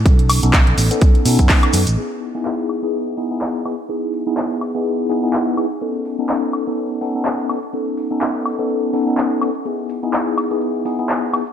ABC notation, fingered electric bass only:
X:1
M:4/4
L:1/16
Q:"Swing 16ths" 1/4=125
K:E
V:1 name="Fingered electric bass" clef=bass
B,,,3 B,,,2 B,,, A,,, z3 B,, F,, z2 F,, A,,, | z16 | z16 | z16 |
z16 | z16 |]